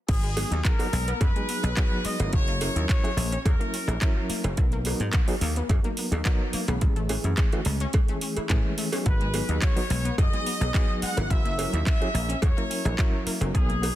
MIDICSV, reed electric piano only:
0, 0, Header, 1, 2, 480
1, 0, Start_track
1, 0, Key_signature, 5, "minor"
1, 0, Tempo, 560748
1, 76, Time_signature, 4, 2, 24, 8
1, 11943, End_track
2, 0, Start_track
2, 0, Title_t, "Reed electric piano"
2, 0, Program_c, 0, 4
2, 309, Note_on_c, 0, 54, 80
2, 313, Note_on_c, 0, 59, 71
2, 316, Note_on_c, 0, 63, 74
2, 319, Note_on_c, 0, 68, 90
2, 649, Note_off_c, 0, 54, 0
2, 651, Note_off_c, 0, 59, 0
2, 653, Note_off_c, 0, 63, 0
2, 654, Note_off_c, 0, 68, 0
2, 677, Note_on_c, 0, 54, 100
2, 680, Note_on_c, 0, 59, 92
2, 682, Note_on_c, 0, 63, 96
2, 684, Note_on_c, 0, 66, 108
2, 740, Note_off_c, 0, 54, 0
2, 742, Note_off_c, 0, 59, 0
2, 742, Note_off_c, 0, 63, 0
2, 744, Note_off_c, 0, 66, 0
2, 1161, Note_on_c, 0, 54, 77
2, 1163, Note_on_c, 0, 59, 73
2, 1167, Note_on_c, 0, 63, 74
2, 1170, Note_on_c, 0, 68, 90
2, 1488, Note_off_c, 0, 54, 0
2, 1489, Note_off_c, 0, 59, 0
2, 1491, Note_off_c, 0, 63, 0
2, 1492, Note_off_c, 0, 68, 0
2, 1513, Note_on_c, 0, 54, 94
2, 1516, Note_on_c, 0, 59, 83
2, 1519, Note_on_c, 0, 63, 85
2, 1523, Note_on_c, 0, 68, 103
2, 1851, Note_off_c, 0, 54, 0
2, 1852, Note_off_c, 0, 59, 0
2, 1854, Note_off_c, 0, 63, 0
2, 1856, Note_off_c, 0, 68, 0
2, 1883, Note_on_c, 0, 54, 80
2, 1884, Note_on_c, 0, 61, 76
2, 1888, Note_on_c, 0, 64, 73
2, 1890, Note_on_c, 0, 70, 85
2, 2209, Note_off_c, 0, 54, 0
2, 2210, Note_off_c, 0, 61, 0
2, 2212, Note_off_c, 0, 64, 0
2, 2213, Note_off_c, 0, 70, 0
2, 2233, Note_on_c, 0, 54, 74
2, 2237, Note_on_c, 0, 61, 73
2, 2240, Note_on_c, 0, 64, 68
2, 2243, Note_on_c, 0, 70, 88
2, 2571, Note_off_c, 0, 54, 0
2, 2573, Note_off_c, 0, 61, 0
2, 2574, Note_off_c, 0, 64, 0
2, 2576, Note_off_c, 0, 70, 0
2, 2597, Note_on_c, 0, 54, 96
2, 2600, Note_on_c, 0, 61, 91
2, 2602, Note_on_c, 0, 64, 95
2, 2606, Note_on_c, 0, 68, 112
2, 2660, Note_off_c, 0, 54, 0
2, 2661, Note_off_c, 0, 61, 0
2, 2662, Note_off_c, 0, 64, 0
2, 2664, Note_off_c, 0, 68, 0
2, 3076, Note_on_c, 0, 54, 80
2, 3080, Note_on_c, 0, 61, 69
2, 3081, Note_on_c, 0, 64, 72
2, 3086, Note_on_c, 0, 70, 93
2, 3405, Note_off_c, 0, 54, 0
2, 3408, Note_off_c, 0, 61, 0
2, 3408, Note_off_c, 0, 64, 0
2, 3410, Note_off_c, 0, 70, 0
2, 3431, Note_on_c, 0, 54, 92
2, 3434, Note_on_c, 0, 61, 86
2, 3437, Note_on_c, 0, 64, 89
2, 3439, Note_on_c, 0, 70, 104
2, 3770, Note_off_c, 0, 54, 0
2, 3771, Note_off_c, 0, 61, 0
2, 3773, Note_off_c, 0, 64, 0
2, 3774, Note_off_c, 0, 70, 0
2, 3801, Note_on_c, 0, 54, 75
2, 3802, Note_on_c, 0, 59, 74
2, 3806, Note_on_c, 0, 63, 72
2, 3811, Note_on_c, 0, 70, 83
2, 4128, Note_off_c, 0, 54, 0
2, 4129, Note_off_c, 0, 59, 0
2, 4131, Note_off_c, 0, 63, 0
2, 4133, Note_off_c, 0, 70, 0
2, 4154, Note_on_c, 0, 54, 76
2, 4158, Note_on_c, 0, 59, 72
2, 4159, Note_on_c, 0, 63, 70
2, 4163, Note_on_c, 0, 70, 86
2, 4491, Note_off_c, 0, 54, 0
2, 4493, Note_off_c, 0, 59, 0
2, 4494, Note_off_c, 0, 63, 0
2, 4496, Note_off_c, 0, 70, 0
2, 4515, Note_on_c, 0, 54, 101
2, 4520, Note_on_c, 0, 59, 87
2, 4520, Note_on_c, 0, 63, 92
2, 4525, Note_on_c, 0, 68, 113
2, 4579, Note_off_c, 0, 54, 0
2, 4581, Note_off_c, 0, 59, 0
2, 4582, Note_off_c, 0, 63, 0
2, 4584, Note_off_c, 0, 68, 0
2, 4996, Note_on_c, 0, 54, 83
2, 5000, Note_on_c, 0, 59, 71
2, 5002, Note_on_c, 0, 63, 74
2, 5004, Note_on_c, 0, 70, 88
2, 5325, Note_off_c, 0, 54, 0
2, 5327, Note_off_c, 0, 59, 0
2, 5329, Note_off_c, 0, 63, 0
2, 5330, Note_off_c, 0, 70, 0
2, 5349, Note_on_c, 0, 54, 93
2, 5351, Note_on_c, 0, 59, 85
2, 5356, Note_on_c, 0, 63, 84
2, 5358, Note_on_c, 0, 70, 105
2, 5689, Note_off_c, 0, 54, 0
2, 5690, Note_off_c, 0, 59, 0
2, 5692, Note_off_c, 0, 63, 0
2, 5693, Note_off_c, 0, 70, 0
2, 5717, Note_on_c, 0, 52, 82
2, 5720, Note_on_c, 0, 57, 75
2, 5721, Note_on_c, 0, 61, 73
2, 5724, Note_on_c, 0, 68, 83
2, 6046, Note_off_c, 0, 52, 0
2, 6048, Note_off_c, 0, 57, 0
2, 6048, Note_off_c, 0, 61, 0
2, 6049, Note_off_c, 0, 68, 0
2, 6071, Note_on_c, 0, 52, 76
2, 6073, Note_on_c, 0, 57, 74
2, 6078, Note_on_c, 0, 61, 69
2, 6079, Note_on_c, 0, 68, 84
2, 6410, Note_off_c, 0, 52, 0
2, 6411, Note_off_c, 0, 57, 0
2, 6413, Note_off_c, 0, 61, 0
2, 6414, Note_off_c, 0, 68, 0
2, 6440, Note_on_c, 0, 52, 103
2, 6443, Note_on_c, 0, 57, 92
2, 6445, Note_on_c, 0, 61, 88
2, 6449, Note_on_c, 0, 66, 114
2, 6501, Note_off_c, 0, 52, 0
2, 6503, Note_off_c, 0, 57, 0
2, 6504, Note_off_c, 0, 61, 0
2, 6506, Note_off_c, 0, 66, 0
2, 6919, Note_on_c, 0, 52, 78
2, 6923, Note_on_c, 0, 57, 73
2, 6926, Note_on_c, 0, 61, 72
2, 6928, Note_on_c, 0, 68, 89
2, 7247, Note_off_c, 0, 52, 0
2, 7249, Note_off_c, 0, 57, 0
2, 7250, Note_off_c, 0, 61, 0
2, 7251, Note_off_c, 0, 68, 0
2, 7272, Note_on_c, 0, 52, 92
2, 7276, Note_on_c, 0, 57, 83
2, 7279, Note_on_c, 0, 61, 84
2, 7282, Note_on_c, 0, 68, 102
2, 7610, Note_off_c, 0, 52, 0
2, 7612, Note_off_c, 0, 57, 0
2, 7614, Note_off_c, 0, 61, 0
2, 7615, Note_off_c, 0, 68, 0
2, 7640, Note_on_c, 0, 54, 81
2, 7643, Note_on_c, 0, 59, 72
2, 7647, Note_on_c, 0, 63, 69
2, 7647, Note_on_c, 0, 68, 85
2, 7968, Note_off_c, 0, 54, 0
2, 7969, Note_off_c, 0, 59, 0
2, 7971, Note_off_c, 0, 63, 0
2, 7971, Note_off_c, 0, 68, 0
2, 7993, Note_on_c, 0, 54, 75
2, 7996, Note_on_c, 0, 59, 71
2, 7999, Note_on_c, 0, 63, 71
2, 8002, Note_on_c, 0, 68, 81
2, 8331, Note_off_c, 0, 54, 0
2, 8332, Note_off_c, 0, 59, 0
2, 8334, Note_off_c, 0, 63, 0
2, 8335, Note_off_c, 0, 68, 0
2, 8358, Note_on_c, 0, 54, 98
2, 8360, Note_on_c, 0, 59, 92
2, 8364, Note_on_c, 0, 63, 93
2, 8367, Note_on_c, 0, 66, 112
2, 8421, Note_off_c, 0, 54, 0
2, 8422, Note_off_c, 0, 59, 0
2, 8423, Note_off_c, 0, 63, 0
2, 8425, Note_off_c, 0, 66, 0
2, 8840, Note_on_c, 0, 54, 84
2, 8841, Note_on_c, 0, 59, 68
2, 8844, Note_on_c, 0, 63, 70
2, 8848, Note_on_c, 0, 68, 88
2, 9167, Note_off_c, 0, 54, 0
2, 9168, Note_off_c, 0, 59, 0
2, 9169, Note_off_c, 0, 63, 0
2, 9171, Note_off_c, 0, 68, 0
2, 9193, Note_on_c, 0, 54, 89
2, 9195, Note_on_c, 0, 59, 83
2, 9198, Note_on_c, 0, 63, 86
2, 9201, Note_on_c, 0, 68, 104
2, 9531, Note_off_c, 0, 54, 0
2, 9532, Note_off_c, 0, 59, 0
2, 9533, Note_off_c, 0, 63, 0
2, 9535, Note_off_c, 0, 68, 0
2, 9557, Note_on_c, 0, 54, 76
2, 9561, Note_on_c, 0, 61, 71
2, 9562, Note_on_c, 0, 64, 73
2, 9565, Note_on_c, 0, 70, 86
2, 9886, Note_off_c, 0, 54, 0
2, 9888, Note_off_c, 0, 61, 0
2, 9889, Note_off_c, 0, 64, 0
2, 9890, Note_off_c, 0, 70, 0
2, 9912, Note_on_c, 0, 54, 79
2, 9913, Note_on_c, 0, 61, 68
2, 9916, Note_on_c, 0, 64, 72
2, 9921, Note_on_c, 0, 70, 88
2, 10251, Note_off_c, 0, 54, 0
2, 10251, Note_off_c, 0, 61, 0
2, 10252, Note_off_c, 0, 64, 0
2, 10255, Note_off_c, 0, 70, 0
2, 10279, Note_on_c, 0, 54, 97
2, 10283, Note_on_c, 0, 61, 94
2, 10286, Note_on_c, 0, 64, 92
2, 10290, Note_on_c, 0, 68, 112
2, 10341, Note_off_c, 0, 54, 0
2, 10343, Note_off_c, 0, 61, 0
2, 10344, Note_off_c, 0, 64, 0
2, 10346, Note_off_c, 0, 68, 0
2, 10759, Note_on_c, 0, 54, 80
2, 10762, Note_on_c, 0, 61, 69
2, 10764, Note_on_c, 0, 64, 74
2, 10768, Note_on_c, 0, 70, 91
2, 11087, Note_off_c, 0, 54, 0
2, 11088, Note_off_c, 0, 61, 0
2, 11089, Note_off_c, 0, 64, 0
2, 11091, Note_off_c, 0, 70, 0
2, 11114, Note_on_c, 0, 54, 94
2, 11116, Note_on_c, 0, 61, 86
2, 11119, Note_on_c, 0, 64, 90
2, 11121, Note_on_c, 0, 70, 105
2, 11451, Note_off_c, 0, 54, 0
2, 11452, Note_off_c, 0, 61, 0
2, 11454, Note_off_c, 0, 64, 0
2, 11455, Note_off_c, 0, 70, 0
2, 11478, Note_on_c, 0, 54, 78
2, 11483, Note_on_c, 0, 59, 72
2, 11484, Note_on_c, 0, 63, 75
2, 11489, Note_on_c, 0, 70, 86
2, 11807, Note_off_c, 0, 54, 0
2, 11809, Note_off_c, 0, 59, 0
2, 11810, Note_off_c, 0, 63, 0
2, 11812, Note_off_c, 0, 70, 0
2, 11831, Note_on_c, 0, 54, 77
2, 11834, Note_on_c, 0, 59, 71
2, 11839, Note_on_c, 0, 63, 71
2, 11841, Note_on_c, 0, 70, 82
2, 11943, Note_off_c, 0, 54, 0
2, 11943, Note_off_c, 0, 59, 0
2, 11943, Note_off_c, 0, 63, 0
2, 11943, Note_off_c, 0, 70, 0
2, 11943, End_track
0, 0, End_of_file